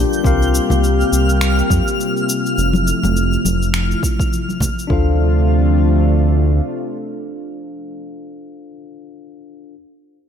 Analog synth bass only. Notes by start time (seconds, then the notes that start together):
0.24 C2
0.71 C2
1.12 C2
1.70 F2
2.58 F1
3.04 F1
3.45 F1
4.90 D2